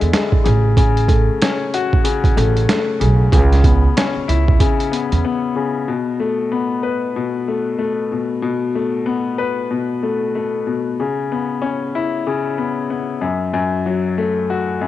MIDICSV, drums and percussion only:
0, 0, Header, 1, 2, 480
1, 0, Start_track
1, 0, Tempo, 638298
1, 580, Time_signature, 4, 2, 24, 8
1, 11186, End_track
2, 0, Start_track
2, 0, Title_t, "Drums"
2, 10, Note_on_c, 9, 42, 47
2, 85, Note_off_c, 9, 42, 0
2, 101, Note_on_c, 9, 38, 112
2, 107, Note_on_c, 9, 42, 83
2, 176, Note_off_c, 9, 38, 0
2, 182, Note_off_c, 9, 42, 0
2, 243, Note_on_c, 9, 36, 93
2, 318, Note_off_c, 9, 36, 0
2, 343, Note_on_c, 9, 42, 69
2, 418, Note_off_c, 9, 42, 0
2, 579, Note_on_c, 9, 36, 109
2, 583, Note_on_c, 9, 42, 90
2, 654, Note_off_c, 9, 36, 0
2, 658, Note_off_c, 9, 42, 0
2, 730, Note_on_c, 9, 42, 50
2, 805, Note_off_c, 9, 42, 0
2, 816, Note_on_c, 9, 36, 109
2, 819, Note_on_c, 9, 42, 82
2, 891, Note_off_c, 9, 36, 0
2, 894, Note_off_c, 9, 42, 0
2, 1064, Note_on_c, 9, 42, 97
2, 1069, Note_on_c, 9, 38, 121
2, 1140, Note_off_c, 9, 42, 0
2, 1144, Note_off_c, 9, 38, 0
2, 1306, Note_on_c, 9, 42, 78
2, 1381, Note_off_c, 9, 42, 0
2, 1451, Note_on_c, 9, 36, 93
2, 1526, Note_off_c, 9, 36, 0
2, 1540, Note_on_c, 9, 42, 99
2, 1615, Note_off_c, 9, 42, 0
2, 1683, Note_on_c, 9, 36, 93
2, 1689, Note_on_c, 9, 42, 56
2, 1758, Note_off_c, 9, 36, 0
2, 1765, Note_off_c, 9, 42, 0
2, 1789, Note_on_c, 9, 42, 77
2, 1864, Note_off_c, 9, 42, 0
2, 1930, Note_on_c, 9, 42, 48
2, 2005, Note_off_c, 9, 42, 0
2, 2023, Note_on_c, 9, 38, 115
2, 2029, Note_on_c, 9, 42, 85
2, 2098, Note_off_c, 9, 38, 0
2, 2104, Note_off_c, 9, 42, 0
2, 2264, Note_on_c, 9, 42, 68
2, 2340, Note_off_c, 9, 42, 0
2, 2499, Note_on_c, 9, 36, 113
2, 2503, Note_on_c, 9, 42, 90
2, 2574, Note_off_c, 9, 36, 0
2, 2578, Note_off_c, 9, 42, 0
2, 2651, Note_on_c, 9, 42, 50
2, 2657, Note_on_c, 9, 38, 38
2, 2726, Note_off_c, 9, 42, 0
2, 2733, Note_off_c, 9, 38, 0
2, 2737, Note_on_c, 9, 36, 104
2, 2739, Note_on_c, 9, 42, 84
2, 2812, Note_off_c, 9, 36, 0
2, 2814, Note_off_c, 9, 42, 0
2, 2986, Note_on_c, 9, 42, 97
2, 2991, Note_on_c, 9, 38, 116
2, 3061, Note_off_c, 9, 42, 0
2, 3066, Note_off_c, 9, 38, 0
2, 3228, Note_on_c, 9, 42, 74
2, 3303, Note_off_c, 9, 42, 0
2, 3371, Note_on_c, 9, 36, 95
2, 3447, Note_off_c, 9, 36, 0
2, 3460, Note_on_c, 9, 36, 96
2, 3461, Note_on_c, 9, 42, 99
2, 3535, Note_off_c, 9, 36, 0
2, 3536, Note_off_c, 9, 42, 0
2, 3611, Note_on_c, 9, 42, 56
2, 3686, Note_off_c, 9, 42, 0
2, 3709, Note_on_c, 9, 42, 77
2, 3784, Note_off_c, 9, 42, 0
2, 3852, Note_on_c, 9, 42, 48
2, 3927, Note_off_c, 9, 42, 0
2, 11186, End_track
0, 0, End_of_file